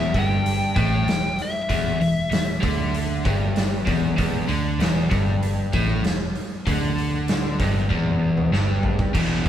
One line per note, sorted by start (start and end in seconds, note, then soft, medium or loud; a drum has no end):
0.00 0.12 E1 medium
0.00 0.13 E2 loud
0.00 0.17 E5 medium
0.14 0.73 G1 medium
0.14 0.76 G2 medium
0.14 kick medium
0.14 open hi-hat soft
0.19 0.75 G5 loud
0.46 open hi-hat medium
0.76 1.05 A1 medium
0.76 1.06 A2 loud
0.76 1.42 G5 medium
0.76 kick loud
0.76 open hi-hat medium
1.07 1.36 E1 medium
1.07 1.33 E2 medium
1.07 snare loud
1.07 open hi-hat medium
1.39 8.51 E5 medium
1.39 open hi-hat soft
1.69 1.98 E1 medium
1.69 2.00 E2 loud
1.69 kick medium
1.69 open hi-hat medium
2.00 2.29 E1 medium
2.00 2.26 E2 medium
2.00 open hi-hat soft
2.31 2.60 E1 medium
2.31 2.57 E2 medium
2.31 snare loud
2.31 open hi-hat medium
2.62 3.21 D2 medium
2.62 3.24 D3 medium
2.62 kick loud
2.62 open hi-hat medium
2.94 open hi-hat medium
3.25 3.83 G1 medium
3.25 3.85 G2 medium
3.25 kick loud
3.25 open hi-hat medium
3.56 snare loud
3.56 open hi-hat medium
3.86 4.16 E1 medium
3.86 4.16 E2 loud
3.86 kick loud
3.86 open hi-hat soft
4.17 4.47 E1 medium
4.17 4.48 E2 loud
4.17 kick loud
4.17 open hi-hat medium
4.48 4.78 D2 medium
4.48 4.79 D3 medium
4.48 open hi-hat soft
4.79 5.09 E1 loud
4.79 5.10 E2 loud
4.79 snare loud
4.79 open hi-hat medium
5.10 5.69 G1 medium
5.10 5.72 G2 medium
5.10 kick loud
5.10 open hi-hat soft
5.43 open hi-hat medium
5.73 6.02 A1 medium
5.73 6.04 A2 loud
5.73 kick loud
5.73 open hi-hat soft
6.03 6.33 E1 medium
6.03 6.29 E2 medium
6.03 snare loud
6.03 open hi-hat medium
6.35 open hi-hat soft
6.67 7.56 D2 medium
6.67 7.59 D3 loud
6.67 kick medium
6.67 open hi-hat medium
6.98 open hi-hat soft
7.28 snare loud
7.28 open hi-hat medium
7.59 7.89 G1 medium
7.59 7.89 G2 medium
7.59 kick loud
7.59 snare soft
7.59 open hi-hat medium
7.90 8.49 E1 medium
7.90 8.52 E2 loud
7.90 kick medium
8.06 high tom medium
8.37 mid tom medium
8.51 9.11 G1 medium
8.51 9.13 G2 medium
8.51 snare medium
8.83 floor tom medium
8.99 kick medium
9.13 9.35 E1 medium
9.13 9.49 E2 medium
9.13 9.49 B2 medium
9.13 kick loud
9.13 crash loud
9.17 9.49 E3 medium
9.45 9.49 E1 medium